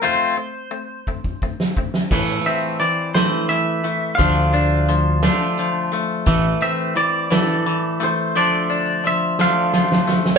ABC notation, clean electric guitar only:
X:1
M:6/8
L:1/8
Q:3/8=58
K:Am
V:1 name="Clean electric guitar"
c4- c z | z e d c e2 | f4 z2 | z e d3 c |
d2 e f2 z |]